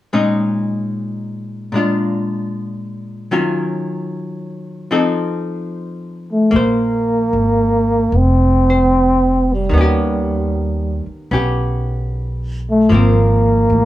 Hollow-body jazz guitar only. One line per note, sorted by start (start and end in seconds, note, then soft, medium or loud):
0.13 1.71 A#2 soft
0.13 1.73 G#3 soft
0.13 1.73 C#4 soft
0.13 1.73 D#4 soft
1.72 3.31 A#2 soft
1.72 3.32 G#3 soft
1.72 3.32 D4 soft
1.77 3.32 F4 soft
3.31 4.91 D#3 soft
3.31 4.90 F#3 soft
3.31 4.91 C#4 soft
3.31 4.91 F4 soft
4.91 6.51 F3 soft
4.91 6.53 C4 soft
4.91 6.53 D#4 soft
4.91 6.53 A4 soft
6.51 9.69 A#3 soft
6.56 8.69 C5 soft
8.70 9.74 C5 soft
9.69 12.89 D#3 soft
9.74 11.30 B3 soft
9.78 11.32 C#4 soft
9.78 11.33 G4 soft
11.31 12.90 B3 soft
11.31 12.91 C#4 soft
11.31 12.92 G4 soft
12.89 13.85 F3 soft
12.89 13.85 A#3 soft
12.94 13.85 C4 soft